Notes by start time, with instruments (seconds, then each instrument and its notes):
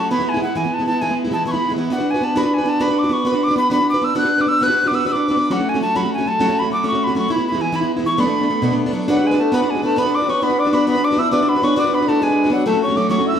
Already playing: steel-string acoustic guitar F#3 C#4, tin whistle A5
0.00 steel-string acoustic guitar A3 F#4
0.11 steel-string acoustic guitar E3 G#3 B3 E4, tin whistle B5
0.19 steel-string acoustic guitar G#3 B3 E4
0.29 tin whistle G#5
0.34 steel-string acoustic guitar G#3 B3 E4
0.41 steel-string acoustic guitar E3 G#3 B3 E4, tin whistle F#5
0.55 steel-string acoustic guitar E3 G#3 B3 E4, tin whistle G#5
0.63 steel-string acoustic guitar G#3 B3 E4
0.74 tin whistle A5
0.79 steel-string acoustic guitar G#3 B3 E4
0.86 steel-string acoustic guitar E3 G#3 B3 E4, tin whistle A5
1.01 steel-string acoustic guitar E3 G#3 B3 E4, tin whistle G#5
1.09 steel-string acoustic guitar G#3 B3 E4
1.25 steel-string acoustic guitar G#3 B3 E4
1.31 steel-string acoustic guitar E3 G#3 B3 E4, tin whistle A5
1.46 steel-string acoustic guitar E3 G#3 B3 E4, tin whistle C#6
1.52 steel-string acoustic guitar B3 E4, tin whistle B5
1.56 steel-string acoustic guitar G#3
1.69 steel-string acoustic guitar G#3 B3 E4
1.76 steel-string acoustic guitar E3 G#3 B3 E4
1.90 steel-string acoustic guitar B3 D4 F#4 B4, tin whistle F#5
1.98 steel-string acoustic guitar D4 F#4 B4
2.11 steel-string acoustic guitar B4, tin whistle G#5
2.16 steel-string acoustic guitar D4 F#4
2.21 steel-string acoustic guitar B3 D4 F#4 B4, tin whistle A5
2.35 steel-string acoustic guitar B3 D4 F#4 B4, tin whistle B5
2.43 steel-string acoustic guitar D4 F#4 B4
2.54 tin whistle G#5
2.58 steel-string acoustic guitar D4 F#4 B4
2.65 steel-string acoustic guitar B3 D4 F#4 B4, tin whistle A5
2.80 steel-string acoustic guitar B3 D4 F#4 B4, tin whistle B5
2.88 steel-string acoustic guitar D4 F#4 B4
2.99 steel-string acoustic guitar B4, tin whistle D6
3.04 steel-string acoustic guitar D4 F#4
3.09 steel-string acoustic guitar B3 D4 F#4 B4, tin whistle C#6
3.25 steel-string acoustic guitar B3 D4 F#4 B4, tin whistle B5
3.32 steel-string acoustic guitar D4 F#4 B4
3.44 tin whistle D6
3.48 steel-string acoustic guitar D4 F#4 B4
3.56 steel-string acoustic guitar B3 D4 F#4 B4, tin whistle B5
3.70 steel-string acoustic guitar B3 D4 F#4 B4, tin whistle B5
3.79 steel-string acoustic guitar D4 F#4 B4
3.90 tin whistle D6
3.94 steel-string acoustic guitar D4 F#4 B4
4.02 steel-string acoustic guitar B3 D4 F#4 B4, tin whistle E6
4.15 steel-string acoustic guitar B3 D4 F#4 B4, tin whistle F#6
4.23 steel-string acoustic guitar D4 F#4 B4
4.38 steel-string acoustic guitar D4 F#4 B4, tin whistle D6
4.46 steel-string acoustic guitar B3 D4 F#4 B4, tin whistle E6
4.61 steel-string acoustic guitar B3 D4 F#4 B4, tin whistle F#6
4.68 steel-string acoustic guitar D4 F#4 B4
4.84 steel-string acoustic guitar D4 F#4 B4, tin whistle D6
4.91 steel-string acoustic guitar B3 D4 F#4 B4, tin whistle E6
5.05 steel-string acoustic guitar B3 D4 F#4 B4, tin whistle E6
5.12 steel-string acoustic guitar D4 F#4 B4, tin whistle D6
5.28 steel-string acoustic guitar D4 F#4 B4
5.36 steel-string acoustic guitar B3 D4 F#4 B4
5.50 steel-string acoustic guitar F#3 A3 C#4 F#4, tin whistle F#5
5.58 steel-string acoustic guitar A3 C#4 F#4
5.69 tin whistle G#5
5.74 steel-string acoustic guitar A3 C#4 F#4
5.81 steel-string acoustic guitar F#3 A3 C#4 F#4, tin whistle A5
5.95 steel-string acoustic guitar F#3 A3 C#4 F#4, tin whistle B5
6.03 steel-string acoustic guitar A3 C#4 F#4
6.14 tin whistle G#5
6.18 steel-string acoustic guitar A3 C#4 F#4
6.26 steel-string acoustic guitar F#3 A3 C#4 F#4, tin whistle A5
6.39 steel-string acoustic guitar F#3 A3 C#4 F#4
6.47 steel-string acoustic guitar A3 C#4 F#4
6.59 steel-string acoustic guitar A3 F#4, tin whistle B5
6.64 steel-string acoustic guitar C#4
6.70 steel-string acoustic guitar F#3 A3 C#4 F#4, tin whistle D6
6.83 steel-string acoustic guitar F#3 A3 C#4 F#4
6.88 tin whistle C#6
6.92 steel-string acoustic guitar A3 C#4 F#4
7.04 steel-string acoustic guitar F#4, tin whistle B5
7.08 steel-string acoustic guitar A3 C#4
7.15 steel-string acoustic guitar F#3 A3 C#4 F#4, tin whistle C#6
7.28 steel-string acoustic guitar E3 G#3 B3 E4, tin whistle B5
7.36 steel-string acoustic guitar G#3 B3 E4
7.48 tin whistle B5
7.52 steel-string acoustic guitar G#3 B3 E4
7.58 steel-string acoustic guitar E3 G#3 B3 E4, tin whistle G#5
7.72 steel-string acoustic guitar E3 G#3 B3 E4, tin whistle B5
7.81 steel-string acoustic guitar G#3 B3 E4
7.96 steel-string acoustic guitar G#3 B3 E4
8.04 steel-string acoustic guitar E3 G#3 B3 E4, tin whistle C#6
8.18 steel-string acoustic guitar B2 F#3 A3 B3 D4, tin whistle B5
8.26 steel-string acoustic guitar A3 B3 D4
8.41 steel-string acoustic guitar A3 B3 D4
8.48 steel-string acoustic guitar F#3 A3 B3 D4
8.62 steel-string acoustic guitar B2 F#3 A3 B3 D4
8.71 steel-string acoustic guitar A3 B3 D4
8.86 steel-string acoustic guitar A3 B3 D4
8.93 steel-string acoustic guitar F#3 A3 B3 D4
9.08 tenor saxophone F#3, steel-string acoustic guitar B3 D4 F#4 B4, tin whistle F#5
9.17 steel-string acoustic guitar D4 F#4 B4
9.25 tenor saxophone G#3, tin whistle G#5
9.31 steel-string acoustic guitar D4 F#4 B4
9.38 tenor saxophone A3, steel-string acoustic guitar B3 D4 F#4 B4, tin whistle A5
9.52 steel-string acoustic guitar B3 D4 F#4 B4, tenor saxophone B3, tin whistle B5
9.62 steel-string acoustic guitar D4 F#4 B4
9.70 tenor saxophone G#3, tin whistle G#5
9.75 steel-string acoustic guitar D4 F#4 B4
9.82 tenor saxophone A3, steel-string acoustic guitar B3 D4 F#4 B4, tin whistle A5
9.96 steel-string acoustic guitar B3 D4 F#4 B4, tenor saxophone B3, tin whistle B5
10.05 steel-string acoustic guitar D4 F#4 B4
10.15 tenor saxophone D4, tin whistle D6
10.20 steel-string acoustic guitar D4 F#4 B4
10.27 steel-string acoustic guitar B3 D4 F#4 B4, tenor saxophone C#4, tin whistle C#6
10.42 steel-string acoustic guitar B3 D4 F#4 B4, tenor saxophone B3, tin whistle B5
10.49 steel-string acoustic guitar D4 F#4 B4
10.59 tenor saxophone D4, tin whistle D6
10.65 steel-string acoustic guitar D4 F#4 B4
10.73 steel-string acoustic guitar B3 D4 F#4 B4, tin whistle B5
10.87 steel-string acoustic guitar B3 D4 F#4 B4, tenor saxophone B3, tin whistle B5
10.95 steel-string acoustic guitar D4 F#4 B4
11.04 tenor saxophone D4, tin whistle D6
11.11 steel-string acoustic guitar D4 F#4 B4
11.17 steel-string acoustic guitar B3 D4 F#4 B4, tenor saxophone E4, tin whistle E6
11.31 steel-string acoustic guitar B3 D4 F#4 B4, tenor saxophone D4, tin whistle D6
11.41 steel-string acoustic guitar D4 F#4 B4
11.49 tenor saxophone B3, tin whistle B5
11.55 steel-string acoustic guitar D4 F#4 B4
11.62 steel-string acoustic guitar B3 D4 F#4 B4, tenor saxophone C#4, tin whistle C#6
11.76 steel-string acoustic guitar B3 D4 F#4 B4, tenor saxophone D4, tin whistle D6
11.84 steel-string acoustic guitar D4 F#4 B4
11.93 tenor saxophone B3, tin whistle B5
12.00 steel-string acoustic guitar D4 F#4 B4
12.07 tenor saxophone A3, steel-string acoustic guitar B3 D4 F#4 B4, tin whistle A5
12.20 tenor saxophone G#3, steel-string acoustic guitar B3 D4 F#4 B4, tin whistle G#5
12.28 steel-string acoustic guitar D4 F#4 B4
12.44 steel-string acoustic guitar D4 F#4 B4
12.50 tenor saxophone F#3, steel-string acoustic guitar B3 D4 F#4 B4, tin whistle F#5
12.66 steel-string acoustic guitar F#3 A3 C#4 F#4, tenor saxophone A3, tin whistle A5
12.73 steel-string acoustic guitar A3 C#4 F#4
12.82 tenor saxophone C#4, tin whistle C#6
12.88 steel-string acoustic guitar A3 C#4 F#4
12.95 steel-string acoustic guitar F#3 A3 C#4 F#4, tin whistle D6
13.09 steel-string acoustic guitar F#3 A3 C#4 F#4, tenor saxophone C#4, tin whistle C#6
13.19 steel-string acoustic guitar A3 C#4 F#4
13.27 tenor saxophone E4, tin whistle E6
13.34 steel-string acoustic guitar A3 C#4 F#4